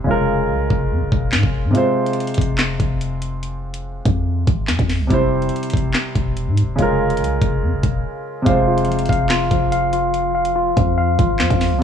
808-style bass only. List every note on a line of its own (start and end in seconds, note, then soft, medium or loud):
0.07 0.51 F1 loud
0.49 0.69 C2 loud
0.70 0.92 F1 loud
0.91 1.03 F2 loud
1.01 1.11 F1 medium
1.12 1.34 E1 loud
1.33 1.43 G#2 loud
1.43 1.66 F1 loud
1.64 1.74 G#2 loud
2.38 2.78 F1 loud
2.80 4.02 F1 loud
4.06 4.46 F2 loud
4.48 4.70 G#1 loud
4.69 4.79 F2 loud
4.79 5.01 F2 loud
5.00 5.10 C2 loud
5.11 5.51 F1 loud
5.74 5.94 F1 loud
6.15 6.48 E1 loud
6.47 6.64 G#2 loud
6.63 6.78 E1 medium
6.78 7.22 F1 loud
7.20 7.40 C2 loud
7.41 7.64 F1 loud
7.62 7.74 F2 loud
7.73 7.83 F1 loud
7.83 8.04 E1 loud
8.46 9.07 F1 loud
9.09 9.49 F1 loud
9.51 10.73 F1 loud
10.77 11.17 F2 loud
11.19 11.41 G#1 loud
11.40 11.50 F2 loud
11.50 11.73 F2 loud
11.71 11.81 C2 loud